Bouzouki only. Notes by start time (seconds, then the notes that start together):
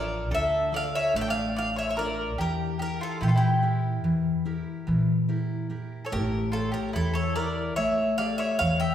Already playing: D5
0.34 E5
0.76 F5
0.95 E5
1.16 F5
1.21 G5
1.30 F5
1.58 F5
1.78 E5
1.90 E5
1.99 D5
2.41 A#4
2.82 A#4
3.03 A4
3.23 G4
3.29 A4
3.37 G4
6.06 C#5
6.12 A#4
6.53 A4
6.74 A#4
6.96 A4
7.15 C#5
7.36 D5
7.76 E5
8.18 F5
8.38 E5
8.59 F5
8.80 G5